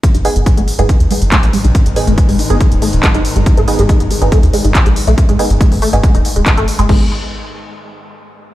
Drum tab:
CC |----------------|----------------|----------------|----------------|
HH |xxoxxxoxxxoxxxox|xxoxxooxxxoxxxox|xxoxxxoxxxoxxxox|xxoxxooxxxoxxxox|
CP |------------x---|------------x---|------------x---|------------x---|
BD |o---o---o---o---|o---o---o---o---|o---o---o---o---|o---o---o---o---|

CC |x---------------|
HH |----------------|
CP |----------------|
BD |o---------------|